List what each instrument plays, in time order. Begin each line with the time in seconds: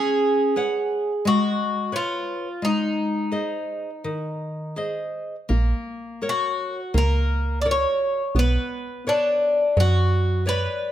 Already playing: nylon-string guitar C#4, bouzouki G#4
0.56 nylon-string guitar B4 C#5 F#5
1.25 nylon-string guitar G#3, bouzouki F#4
1.92 bouzouki F4, nylon-string guitar B4 C#5
2.62 nylon-string guitar G#3, bouzouki D#4
3.31 nylon-string guitar G#4 C5 D#5
4.04 nylon-string guitar D#3
4.76 nylon-string guitar G#4 C5 D#5
5.49 fm bass A#1, nylon-string guitar A#3
6.22 nylon-string guitar F#4 A#4 C#5
6.29 bouzouki F#4
6.94 fm bass C#2, nylon-string guitar A#3, bouzouki A#4
7.61 nylon-string guitar F#4 A#4, bouzouki D5
7.66 nylon-string guitar C#5
7.71 bouzouki C#5
8.35 fm bass B1, nylon-string guitar B3
8.39 bouzouki B4
9.07 bouzouki D4, nylon-string guitar B4 C#5 D5
9.77 fm bass F#2, nylon-string guitar F#3, bouzouki F#4
10.46 nylon-string guitar B4 C#5 D5, bouzouki B4